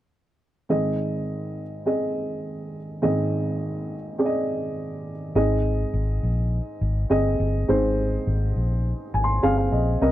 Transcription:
0.69 upright piano G#1 G#2 C4 G#4 D#5
1.85 upright piano C4 G#4 D#5
3.02 upright piano G#1 G#2 C4 G#4 D#5
4.18 upright piano C4 G#4 D5
4.26 upright piano D#5
5.35 fingered electric bass G#1, upright piano G#2 C4 G#4 D#5
5.94 fingered electric bass G#1
6.23 fingered electric bass A#1
6.81 fingered electric bass G#1
7.10 fingered electric bass G1, upright piano C4 G#4 D#5
7.40 fingered electric bass G1
7.68 fingered electric bass G#1, upright piano G#2 C4 G#4 C5
8.27 fingered electric bass G#1
8.56 fingered electric bass A#1
9.14 fingered electric bass G#1, upright piano G#5
9.24 upright piano C6
9.43 fingered electric bass G1, upright piano C4 G#4 F5 G#5
9.57 upright piano F5
9.72 fingered electric bass A#1, upright piano D#5
10.01 fingered electric bass C2, upright piano C3 C4 A#4 D#5

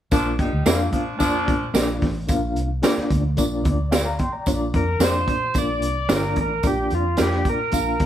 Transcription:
0.11 fingered electric bass A#1, saxophone section A#2 F3 D4, reed electric piano A#3 D4 F4 D5, kick, closed hi-hat, tambourine
0.39 saxophone section G3 D#4 G4, kick, closed hi-hat
0.53 fingered electric bass D2
0.65 fingered electric bass F2, saxophone section D3 A#3 F4, clean electric guitar A#3 F4 A#4 D5, reed electric piano A#3 D4 F4 E5, snare, closed hi-hat, tambourine
0.73 reed electric piano F5
0.92 saxophone section A#2 F3 D4, fingered electric bass A#2, kick, closed hi-hat
1.18 fingered electric bass F2, saxophone section A#2 F3 D4, reed electric piano A#3 D4 F4 D5, kick, closed hi-hat, tambourine
1.48 fingered electric bass A#2, kick, closed hi-hat
1.74 fingered electric bass A#1, reed electric piano A#3 D4 F4 D5, clean electric guitar A#3 F4 A#4 D5, snare, closed hi-hat, tambourine
2.02 fingered electric bass A1, kick, snare, open hi-hat
2.27 fingered electric bass A#1, reed electric piano A#3 D4 F4 F5, kick, closed hi-hat, tambourine
2.56 fingered electric bass C2, closed hi-hat
2.82 reed electric piano A#3 D4 F4 D5, clean electric guitar A#3 F4 A#4 D5, snare, closed hi-hat, tambourine
2.97 muted fingered electric bass stroke, snare
3.10 fingered electric bass D2, kick, closed hi-hat
3.37 fingered electric bass A#1, reed electric piano A#3 D4 F4 D5, kick, closed hi-hat, tambourine
3.64 fingered electric bass D2, reed electric piano D5, kick, closed hi-hat
3.91 clean electric guitar A#3 F4 A#4 D5, reed electric piano F5, snare, closed hi-hat, tambourine
4.05 reed electric piano D5 A#5
4.19 fingered electric bass A1, reed electric piano G5 C6, kick, closed hi-hat
4.33 reed electric piano D5 A#5
4.46 fingered electric bass A#1, reed electric piano A#3 D4 F4 C#5, kick, closed hi-hat, tambourine
4.54 reed electric piano D5
4.74 fingered electric bass F2, tonewheel organ A#4, kick, closed hi-hat
4.99 fingered electric bass F2, reed electric piano A#3 D4 F4 C5, clean electric guitar D4 F4 A#4 D5, snare, closed hi-hat, tambourine
5.03 tonewheel organ C5
5.08 reed electric piano D5
5.28 fingered electric bass A#2, kick, closed hi-hat
5.54 fingered electric bass A#1, reed electric piano A#3 D4 F4 D5, kick, closed hi-hat, tambourine
5.58 tonewheel organ D5
5.82 fingered electric bass C2, closed hi-hat
6.09 fingered electric bass G1, reed electric piano A#3 D4 F4 C#5, clean electric guitar D4 F4 A#4 D5, tonewheel organ A#4, snare, closed hi-hat, tambourine
6.16 reed electric piano D5
6.36 fingered electric bass A1, kick, closed hi-hat
6.41 tonewheel organ A#4
6.63 fingered electric bass A#1, reed electric piano A#3 D4 F4 D5, tonewheel organ G4, kick, closed hi-hat, tambourine
6.90 fingered electric bass F2, closed hi-hat
6.95 tonewheel organ F4
7.17 fingered electric bass F2, reed electric piano A#3 D4 F4 D5, clean electric guitar D4 F4 A#4 D5, snare, closed hi-hat, tambourine
7.22 tonewheel organ G4
7.32 snare
7.45 fingered electric bass A#2, kick, closed hi-hat
7.49 tonewheel organ A#4
7.72 fingered electric bass A#1, reed electric piano A#3 D4 F4 F5, kick, closed hi-hat, tambourine
8.00 fingered electric bass C2, kick, closed hi-hat

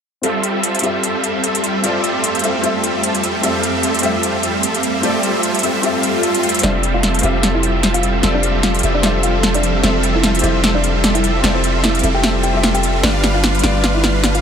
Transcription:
0.22 ambient pad F2 A3 G4, supersaw synth G3 C4 F4 A4 E5, felt piano C4 F4 G4 A4, closed hi-hat
0.26 felt piano E5
0.44 closed hi-hat
0.63 closed hi-hat
0.75 closed hi-hat
0.79 felt piano C4 F4, closed hi-hat
0.83 supersaw synth G3 C4 F4 A4 E5, felt piano G4 A4 E5, closed hi-hat
1.04 closed hi-hat
1.24 closed hi-hat
1.44 closed hi-hat
1.55 closed hi-hat
1.64 closed hi-hat
1.82 supersaw synth G3 C4 F4 A4 E5, felt piano C4 F4 G4 A4 D5, closed hi-hat
2.04 closed hi-hat
2.24 closed hi-hat
2.35 closed hi-hat
2.39 felt piano C4 F4, closed hi-hat
2.43 supersaw synth G3 C4 F4 A4 E5, felt piano G4 A4 E5, closed hi-hat
2.62 felt piano C4 F4 G4 A4, closed hi-hat
2.66 felt piano E5
2.84 closed hi-hat
3.03 closed hi-hat
3.15 closed hi-hat
3.24 closed hi-hat
3.42 supersaw synth G3 C4 F4 A4 E5, felt piano C4 F4 G4 A4 E5, closed hi-hat
3.63 closed hi-hat
3.83 closed hi-hat
3.94 closed hi-hat
3.99 felt piano C4 F4, closed hi-hat
4.03 supersaw synth G3 C4 F4 A4 E5, felt piano G4 A4 E5, closed hi-hat
4.23 closed hi-hat
4.43 closed hi-hat
4.63 closed hi-hat
4.75 closed hi-hat
4.83 closed hi-hat
5.01 supersaw synth G3 C4 F4 A4 E5, felt piano C4 F4 G4 A4, closed hi-hat
5.05 felt piano D5
5.23 closed hi-hat
5.43 closed hi-hat
5.55 closed hi-hat
5.59 felt piano C4, closed hi-hat
5.63 supersaw synth G3 C4 F4 A4 E5, felt piano F4 G4 A4 E5, closed hi-hat
5.82 felt piano C4 F4 G4 A4, closed hi-hat, swell
5.86 felt piano E5
6.03 closed hi-hat
6.23 closed hi-hat
6.35 closed hi-hat
6.43 closed hi-hat
6.49 closed hi-hat
6.55 closed hi-hat
6.59 felt piano C4 F4, closed hi-hat
6.63 808-style bass F1, ambient pad F3 G4 A4 E5, supersaw synth G3 C4 F4 A4 E5, kalimba D4 D5, felt piano G4 A4 E5, snare, closed hi-hat
6.83 closed hi-hat
6.94 kalimba F4 F5
7.03 snare, closed hi-hat
7.14 closed hi-hat
7.19 felt piano C4 F4, closed hi-hat
7.23 808-style bass F1, supersaw synth G3 C4 F4 A4 E5, kalimba F4 F5, felt piano G4 A4 E5, closed hi-hat
7.43 snare, closed hi-hat
7.55 kalimba E4 E5
7.63 closed hi-hat
7.83 snare, closed hi-hat
7.94 kalimba F4 F5, closed hi-hat
8.03 closed hi-hat
8.21 808-style bass F1, supersaw synth G3 C4 F4 A4 E5, felt piano C4 F4 G4 A4 D5, snare, closed hi-hat
8.34 kalimba D4 D5
8.43 closed hi-hat
8.63 kalimba F4 F5, snare, closed hi-hat
8.75 closed hi-hat
8.79 felt piano C4 F4, closed hi-hat
8.83 808-style bass F1, supersaw synth G3 C4 F4 A4 E5, felt piano G4 A4 E5, closed hi-hat
8.95 kalimba D4 D5
9.01 felt piano C4 F4 G4 A4, snare, closed hi-hat
9.05 felt piano E5
9.23 kalimba F4 F5, closed hi-hat
9.43 snare, closed hi-hat
9.54 kalimba D4 D5, closed hi-hat
9.63 closed hi-hat
9.82 808-style bass F1, supersaw synth G3 C4 F4 A4 E5, felt piano C4 F4 G4 A4 E5, kalimba C4 C5, snare, closed hi-hat
10.03 closed hi-hat
10.15 kalimba E4 E5
10.24 snare, closed hi-hat
10.35 closed hi-hat
10.39 felt piano C4 F4, closed hi-hat
10.43 808-style bass F1, supersaw synth G3 C4 F4 A4 E5, kalimba E4 E5, felt piano G4 A4 E5, closed hi-hat
10.64 snare, closed hi-hat
10.75 kalimba D4 D5
10.84 closed hi-hat
11.04 snare, closed hi-hat
11.15 kalimba E4 E5, closed hi-hat
11.24 closed hi-hat
11.41 808-style bass F1, supersaw synth G3 C4 F4 A4 E5, felt piano C4 F4 G4 A4, snare, closed hi-hat
11.45 felt piano D5
11.55 kalimba C4 C5
11.64 closed hi-hat
11.83 kalimba E4 E5, snare, closed hi-hat
11.95 closed hi-hat
11.99 felt piano C4 F4, closed hi-hat
12.03 808-style bass F1, supersaw synth G3 C4 F4 A4 E5, felt piano G4 A4 E5, closed hi-hat
12.15 kalimba G4 G5
12.22 felt piano C4 F4 G4 A4 E5, snare, closed hi-hat
12.43 kalimba G4 G5, closed hi-hat
12.52 felt piano C4 F4 G4 A4
12.57 felt piano E5
12.63 snare, closed hi-hat
12.74 kalimba G4 G5, closed hi-hat
12.83 closed hi-hat
13.01 808-style bass G1, supersaw synth G3 D4 F4 B4 F5, ambient pad G3 F4 B4, felt piano B3 D4 F4 G4, kalimba D4 D5, snare, closed hi-hat, riser
13.05 felt piano D5
13.24 snare, closed hi-hat
13.35 kalimba F4 F5
13.44 snare, closed hi-hat
13.55 closed hi-hat
13.59 felt piano B3 D4, closed hi-hat
13.63 808-style bass G1, supersaw synth G3 D4 F4 B4 F5, kalimba F4 F5, felt piano F4 G4 D5, snare, closed hi-hat
13.84 snare, closed hi-hat
13.95 kalimba E4 E5
14.04 snare, closed hi-hat
14.24 snare, closed hi-hat
14.35 kalimba F4 F5, closed hi-hat

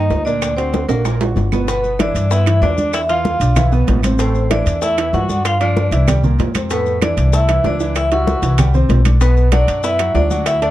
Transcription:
Already playing: upright piano D#3 A#3 D#4, tenor saxophone D#4, vibraphone D#5
0.10 upright bass D2, high bongo, low bongo, high conga, low timbale, maracas
0.25 upright piano A#2 A#3 A#4, tenor saxophone D4, vibraphone D5, high bongo, maracas
0.42 high bongo, high conga, high timbale, claves, maracas
0.56 upright piano D3 D4 F#4, tenor saxophone C4, vibraphone C5, high bongo, high conga, high timbale, maracas
0.73 high bongo, high conga, high timbale, maracas
0.88 upright bass A#1, upright piano D3 D4 F#4, tenor saxophone A#3, vibraphone A#4, high conga, high timbale, maracas
1.05 upright piano A#2 A#3 A#4, high bongo, high conga, low timbale, claves, maracas
1.20 upright piano D3 D4 F#4, high bongo, high conga, low timbale, maracas
1.36 upright bass G1, high bongo, low bongo, high conga, low timbale, maracas
1.52 upright piano B2 B3 B4, high bongo, high conga, low timbale, claves, maracas
1.68 upright piano B2 B3 B4, tenor saxophone B3, vibraphone B4, high bongo, high conga, high timbale, maracas
1.83 high bongo, high conga, maracas
1.99 upright piano E3 E4 E5, tenor saxophone D4, vibraphone D5, high bongo, high conga, high timbale, low timbale, claves, maracas
2.15 upright bass G2, high conga, high timbale, maracas
2.31 upright piano B3 B4 B5, tenor saxophone E4, vibraphone E5, high bongo, high conga, maracas
2.46 upright piano E3 E4 E5, high bongo, high conga, high timbale, claves, maracas
2.62 upright bass E2, tenor saxophone D4, vibraphone D5, high bongo, low bongo, high conga, low timbale, maracas
2.78 upright piano D3 D4 D5, high bongo, high conga, maracas
2.93 tenor saxophone E4, vibraphone E5, high bongo, high conga, high timbale, claves, maracas
3.09 upright piano E3 F4 F5, tenor saxophone F4, vibraphone F5, high bongo, high conga, high timbale, maracas
3.25 high bongo, high conga, low timbale, maracas
3.40 upright bass B1, upright piano D3 D4 D5, high conga, high timbale, maracas
3.56 upright piano E3 E4 E5, high bongo, high conga, low conga, high timbale, claves, maracas
3.72 upright piano B2 B3 B4, high bongo, high conga, maracas
3.87 upright bass A1, high bongo, low bongo, high conga, high timbale, low timbale, maracas
4.03 upright piano C3 C4 C5, high bongo, high conga, high timbale, claves, maracas
4.19 upright piano A2 A3 A4, tenor saxophone C4, vibraphone C5, high bongo, high conga, high timbale, maracas
4.35 high bongo, high conga, maracas
4.50 upright piano E3 E4 E5, tenor saxophone D4, vibraphone D5, high bongo, high conga, high timbale, low timbale, claves, maracas
4.66 upright bass E2, high conga, high timbale, maracas
4.82 upright piano A3 A4 A5, tenor saxophone E4, vibraphone E5, high bongo, high conga, maracas
4.97 upright piano E3 E4 E5, high bongo, high conga, high timbale, claves, maracas
5.13 upright bass G2, tenor saxophone F#4, vibraphone F#5, high bongo, low bongo, high conga, low timbale, maracas
5.29 upright piano D3 D4 D5, high bongo, high conga, maracas
5.45 tenor saxophone F4, vibraphone F5, high bongo, high conga, high timbale, claves, maracas
5.60 upright piano F3 F4 F5, tenor saxophone D4, vibraphone D5, high bongo, high conga, high timbale, maracas
5.77 high bongo, high conga, low timbale, maracas
5.91 upright bass C2, upright piano E3 E4 E5, high conga, high timbale, maracas
6.08 upright piano G3 G4 G5, high bongo, high conga, low conga, high timbale, claves, maracas
6.24 upright piano A#2 A#3 A#4, high bongo, high conga, low conga, maracas
6.39 upright bass F2, high bongo, low bongo, high conga, high timbale, low timbale, maracas
6.55 upright piano C3 C4 C5, high bongo, high conga, high timbale, claves, maracas
6.70 upright piano A2 A3 A4, tenor saxophone B3, vibraphone B4, high bongo, high conga, high timbale, maracas
6.86 high bongo, high conga, maracas
7.01 upright piano E3 E4 E5, tenor saxophone D4, vibraphone D5, high bongo, high conga, high timbale, low timbale, claves, maracas
7.17 upright bass C2, high conga, high timbale, maracas
7.33 upright piano A3 A4 A5, tenor saxophone E4, vibraphone E5, high bongo, high conga, maracas
7.48 upright piano E3 E4 E5, high bongo, high conga, high timbale, claves, maracas
7.64 upright bass C#2, tenor saxophone D4, vibraphone D5, high bongo, low bongo, high conga, low timbale, maracas
7.80 upright piano E3 E4 E5, high bongo, maracas
7.95 tenor saxophone E4, vibraphone E5, high bongo, high conga, high timbale, claves, maracas
8.11 upright piano G3 E4 E5, tenor saxophone F#4, vibraphone F#5, high bongo, high conga, high timbale, maracas
8.27 high bongo, high conga, low timbale, maracas
8.42 upright bass C2, upright piano E3 E4 E5, high conga, high timbale, maracas
8.58 upright piano G3 G4 G5, high bongo, high conga, low conga, high timbale, claves, maracas
8.74 upright piano C3 C4 C5, high bongo, high conga, low conga, maracas
8.89 upright bass B1, high bongo, low bongo, high conga, high timbale, low timbale, maracas
9.05 upright piano D3 D4 D5, high bongo, high conga, high timbale, claves, maracas
9.21 upright piano B2 B3 B4, tenor saxophone B3, vibraphone B4, high bongo, high conga, high timbale, maracas
9.37 high bongo, high conga, maracas
9.52 upright piano F#3 F#4 F#5, tenor saxophone D4, vibraphone D5, high bongo, high conga, high timbale, low timbale, claves, maracas
9.68 upright bass F#2, high conga, high timbale, maracas
9.84 upright piano B3 B4 B5, tenor saxophone E4, vibraphone E5, high bongo, high conga, maracas
9.99 upright piano F#3 F#4 F#5, high bongo, high conga, high timbale, claves, maracas
10.14 upright bass D2, tenor saxophone D4, vibraphone D5, high bongo, low bongo, high conga, low timbale, maracas
10.30 upright piano F#3 F#4 F#5, high bongo, high conga, maracas
10.46 tenor saxophone E4, vibraphone E5, high bongo, high conga, high timbale, claves, maracas
10.62 upright piano A3 A4 A5, tenor saxophone D4, vibraphone D5, high bongo, high conga, high timbale, maracas

